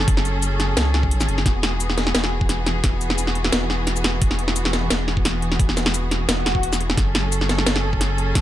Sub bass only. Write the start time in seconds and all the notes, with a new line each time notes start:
0.08 F#1
0.77 C#2
1.28 F#1
1.46 E1
2.15 E1
2.84 E1
3.53 E1
4.22 E1
4.91 E1
5.59 E1
6.28 E1
6.63 E1
6.98 F#1
7.67 F#1
8.35 F#1